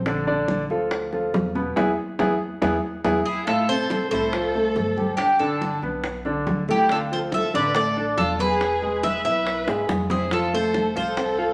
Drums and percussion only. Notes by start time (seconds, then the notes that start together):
0.06 high bongo
0.27 high conga
0.48 high bongo, high conga
0.70 high bongo, high conga
0.91 high bongo, high conga
1.13 high bongo, high conga
1.34 high bongo, low bongo, high conga
1.55 high bongo, high conga
1.77 high bongo, high conga
2.19 high bongo, high conga
2.62 high bongo, high conga
3.05 high bongo, high conga
3.48 high bongo, high conga
3.70 high conga
3.90 high bongo, high conga
4.12 high bongo, high conga
4.33 high bongo, high conga
4.54 high bongo, high conga
4.76 high bongo, low bongo, high conga
4.97 high bongo, high conga
5.18 high bongo
5.40 high conga
5.61 high bongo, high conga
5.82 high bongo, high conga
6.04 high bongo, high conga
6.25 high bongo, high conga
6.47 high bongo, low bongo, high conga
6.68 high bongo, high conga
6.89 high bongo, high conga
7.11 high conga
7.32 high bongo, high conga
7.54 high bongo, high conga
7.75 high bongo, high conga
7.96 high bongo, high conga
8.18 high bongo, low bongo, high conga
8.39 high bongo, high conga
8.61 high bongo, high conga
8.83 high conga
9.03 high bongo, high conga
9.25 high bongo, high conga
9.46 high bongo, high conga
9.68 high bongo, high conga
9.89 high bongo, high conga
10.10 low bongo, high conga
10.31 high bongo, high conga
10.53 high conga
10.74 high bongo, high conga
10.96 high bongo, high conga
11.17 high bongo, high conga
11.39 high bongo, high conga